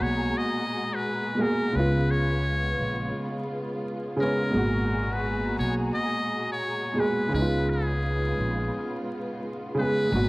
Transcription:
Already playing: A#2 B2 G#3 F#4 G#4 A#5
0.01 B1 C#5
0.37 D#5
0.95 B4
1.35 B2 G#3
1.39 A#3 G#4 A#4
1.73 C#2 C#3 G#3 B3 F4 B4
1.77 B3 F4
2.11 C#5
2.79 A#1
4.16 C#3 G#3 A#4
4.20 B3 C#4
4.51 G#1 B2 G#3 F#4 G#4 A#5
4.55 A#2 F#4
5.13 B4
5.58 B1 C#5
5.94 D#5
6.52 C#5
6.94 B2 G#3
6.98 A#2 G#4 B4
7.29 C#3 G#3
7.33 C#2 C#3 G#3 B3 D#4 F4 B4
7.42 F4
7.69 G#4
8.38 A#1
9.75 C#3 G#3
9.79 B3 G#4 B4
10.09 G#1 A#2 G#3 G#4
10.13 A#2 B2 F#4 A#5

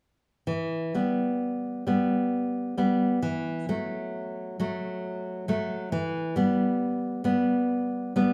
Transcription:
0.47 E3
0.94 G3 B3
1.87 G3 B3
2.78 G3 B3
3.22 E3
3.69 F#3 A3
4.60 F#3 A3
5.48 F#3 A3
5.92 E3
6.36 G3 B3
7.24 G3 B3
8.16 G3 B3

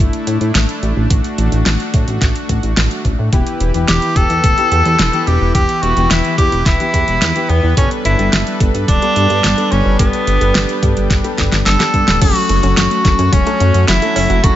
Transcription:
Already playing: A3 D4 E4
0.13 closed hi-hat
0.27 A2, closed hi-hat
0.41 A2, closed hi-hat
0.55 A1, snare, closed hi-hat
0.69 closed hi-hat
0.83 A1, closed hi-hat
0.97 A1
1.10 A1 F#4, kick, closed hi-hat
1.24 closed hi-hat
1.38 A1, closed hi-hat
1.52 A1, closed hi-hat
1.66 A1, snare, closed hi-hat
1.80 closed hi-hat
1.94 A2, kick, closed hi-hat
2.08 A1, closed hi-hat
2.21 A1, kick, snare, closed hi-hat
2.35 closed hi-hat
2.49 A1, kick, closed hi-hat
2.63 A1, closed hi-hat
2.77 A1, snare, closed hi-hat
2.91 closed hi-hat
3.05 A1, kick, closed hi-hat
3.19 A2
3.33 E1 E3 B3 E4 G4 B4, kick, closed hi-hat
3.47 closed hi-hat
3.60 E1, closed hi-hat
3.74 E1 E3 B3 G4, closed hi-hat
3.88 E1 G4, snare, closed hi-hat
4.02 closed hi-hat
4.16 E1 E3 B3 G4 A4, kick, closed hi-hat
4.30 E2, closed hi-hat
4.44 D1, kick, closed hi-hat
4.58 E3 B3 G4, closed hi-hat
4.72 E2, closed hi-hat
4.85 E2, closed hi-hat
4.99 E1, snare, closed hi-hat
5.13 E3 B3 G4, closed hi-hat
5.27 E1 G4, closed hi-hat
5.41 E1
5.55 E1 E3 B3 G4, kick, closed hi-hat
5.69 closed hi-hat
5.83 E1 F#4, closed hi-hat
5.97 E1 E3 B3 G4, closed hi-hat
6.10 E1 E4, snare, closed hi-hat
6.24 closed hi-hat
6.38 E2 E3 B3 G4, kick, closed hi-hat
6.52 E1, closed hi-hat
6.66 E1 E4, kick, snare, closed hi-hat
6.80 E3 B3 G4, closed hi-hat
6.94 E2, kick, closed hi-hat
7.08 E1, closed hi-hat
7.22 E2, snare, closed hi-hat
7.35 E3 B3 G4, closed hi-hat
7.49 E2 B3, closed hi-hat
7.63 E2
7.77 G1 G3 B3 C#4 D4 A4, kick, closed hi-hat
7.91 closed hi-hat
8.05 G1 E4, closed hi-hat
8.19 G1 G3 B3 A4, closed hi-hat
8.33 G1, snare, closed hi-hat
8.47 closed hi-hat
8.60 G1 G3 B3 A4, kick, closed hi-hat
8.74 G2, closed hi-hat
8.88 D1 D4, kick, closed hi-hat
9.02 G3 B3 A4, closed hi-hat
9.16 G2, closed hi-hat
9.30 G2, closed hi-hat
9.44 G1, snare, closed hi-hat
9.58 G3 B3 A4, closed hi-hat
9.72 G1 C#4, closed hi-hat
9.86 G1
9.99 G1 G3 B3 G4 A4, kick, closed hi-hat
10.13 closed hi-hat
10.27 G1, closed hi-hat
10.41 G1 G3 B3 A4, closed hi-hat
10.55 G1, snare, closed hi-hat
10.69 closed hi-hat
10.83 G2 G3 B3 A4, kick, closed hi-hat
10.97 G1, closed hi-hat
11.10 G1, kick, snare, closed hi-hat
11.24 G3 B3 A4, closed hi-hat
11.38 G1, kick, snare, closed hi-hat
11.52 G1, snare, closed hi-hat
11.66 G1 A4, snare, closed hi-hat
11.80 G3 B3 A4, snare, closed hi-hat
11.94 G2, kick, closed hi-hat
12.08 D1, snare, closed hi-hat
12.21 F#1 F#3 A3 C#4 F#4 A4, kick, closed hi-hat, crash
12.36 closed hi-hat
12.49 F#1 A3, closed hi-hat
12.63 F#1 F#3 C#4 A4, closed hi-hat
12.77 F#1 F#3 F#4, snare, closed hi-hat
12.91 A3, closed hi-hat
13.05 F#1 F#3 C#4 A4, kick, snare, closed hi-hat
13.19 F#2 C#4, closed hi-hat
13.33 E1 F#3 C#4, kick, closed hi-hat
13.46 F#3 A3 C#4 A4, closed hi-hat
13.60 F#2 C#4, closed hi-hat
13.74 F#2, closed hi-hat
13.88 F#1 F#3 E4, snare, closed hi-hat
14.02 F#3 A3 C#4 A4, closed hi-hat
14.16 F#1 C#4, open hi-hat
14.30 F#1 F#3, closed hi-hat
14.44 F#1 F#3 C#4 E4 F#4 A4, kick, closed hi-hat

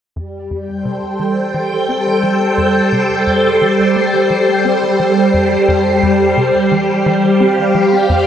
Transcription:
0.16 F2 G3 D5
0.51 F2
0.57 G5
0.73 C5
0.78 A4
0.85 C3
1.19 E3
1.54 E3
1.89 C4
2.23 F3
2.58 F2
2.92 C3
3.27 F2
3.61 E3
3.96 A3
4.30 F3
4.65 C4
5.00 F3
5.34 F2
5.68 F2
6.03 F2
6.37 C3
6.47 G4
6.72 E3
7.06 E3
7.18 F5
7.40 C4
7.75 F3
8.09 F2

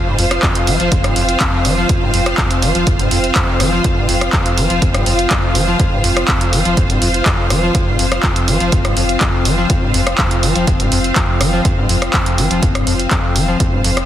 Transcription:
Already playing: C4 F4 C5 F5
0.07 G#2
0.18 F1 F2, open hi-hat
0.31 cross-stick, closed hi-hat
0.43 F2, kick, clap
0.55 closed hi-hat
0.67 F1 F3, open hi-hat
0.80 F1 F3, closed hi-hat
0.92 D#1 F2, kick, closed hi-hat
1.04 G#2, cross-stick, closed hi-hat
1.16 F1 F2, open hi-hat
1.29 closed hi-hat
1.40 F2, kick, clap, closed hi-hat
1.65 F1 F3, open hi-hat
1.77 F3
1.89 F2, kick, closed hi-hat
2.02 G#2
2.14 F1 F2, open hi-hat
2.26 cross-stick, closed hi-hat
2.38 F2, kick, clap
2.51 closed hi-hat
2.62 F1 F3, open hi-hat
2.75 F1 F3, closed hi-hat
2.87 D#1 F2, kick, closed hi-hat
2.99 G#2, closed hi-hat
3.11 F1 F2, open hi-hat
3.24 closed hi-hat
3.35 F2, kick, clap, closed hi-hat
3.60 F1 F3, cross-stick, open hi-hat
3.73 F3
3.84 F2, kick, closed hi-hat
3.97 G#2
4.09 F1 F2, open hi-hat
4.21 cross-stick, closed hi-hat
4.33 F2, kick, clap
4.46 closed hi-hat
4.57 F1 F3, open hi-hat
4.70 F1 F3, closed hi-hat
4.82 D#1 F2, kick, closed hi-hat
4.94 G#2, cross-stick, closed hi-hat
5.06 F1 F2, open hi-hat
5.19 closed hi-hat
5.30 F2, kick, clap, closed hi-hat
5.55 F1 F3, open hi-hat
5.68 F3
5.80 F2, kick, closed hi-hat
5.92 G#2
6.04 F1 F2, open hi-hat
6.17 cross-stick, closed hi-hat
6.28 F2, kick, clap
6.41 closed hi-hat
6.53 F1 F3, open hi-hat
6.65 F1 F3, closed hi-hat
6.77 D#1 F2, kick, closed hi-hat
6.90 G#2, closed hi-hat
7.01 F1 F2, open hi-hat
7.14 closed hi-hat
7.26 F2, kick, clap, closed hi-hat
7.50 F1 F3, cross-stick, open hi-hat
7.63 F3
7.75 F2 C4, kick, closed hi-hat
7.87 G#2
7.99 F1 F2, open hi-hat
8.12 cross-stick, closed hi-hat
8.23 F2, kick, clap
8.36 closed hi-hat
8.48 F1 F3, open hi-hat
8.60 F1 F3, closed hi-hat
8.72 D#1 F2, kick, closed hi-hat
8.85 G#2, cross-stick, closed hi-hat
8.97 F1 F2, open hi-hat
9.09 closed hi-hat
9.21 F2, kick, clap, closed hi-hat
9.45 F1 F3, open hi-hat
9.58 F3
9.70 F2, kick, closed hi-hat
9.82 G#2
9.94 F1 F2, open hi-hat
10.07 cross-stick, closed hi-hat
10.18 F2, kick, clap
10.31 closed hi-hat
10.43 F1 F3, open hi-hat
10.55 F1 F3, closed hi-hat
10.67 D#1 F2, kick, closed hi-hat
10.80 G#2, closed hi-hat
10.92 F1 F2, open hi-hat
11.04 closed hi-hat
11.16 F2, kick, clap, closed hi-hat
11.40 F1 F3, cross-stick, open hi-hat
11.53 F3
11.65 F2, kick, closed hi-hat
11.78 G#2
11.89 F1 F2, open hi-hat
12.02 cross-stick, closed hi-hat
12.14 F2, kick, clap
12.26 closed hi-hat
12.38 F1 F3, open hi-hat
12.50 F1 F3, closed hi-hat
12.62 D#1 F2, kick, closed hi-hat
12.75 G#2, cross-stick, closed hi-hat
12.87 F1 F2, open hi-hat
12.99 closed hi-hat
13.11 F2, kick, clap, closed hi-hat
13.35 F1 F3, open hi-hat
13.48 F3
13.60 F2, kick, closed hi-hat
13.72 G#2
13.84 F1 F2, open hi-hat
13.97 cross-stick, closed hi-hat

